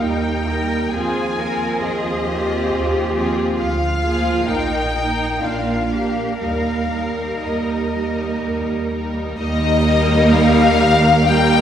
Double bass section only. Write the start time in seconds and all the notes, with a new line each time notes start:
0.02 D#2
0.94 D#2
1.83 D#2
2.73 D#2
3.60 D2
4.49 A#1
5.43 A#1
6.41 D#2
7.42 D#2
8.42 D#2
9.40 D#2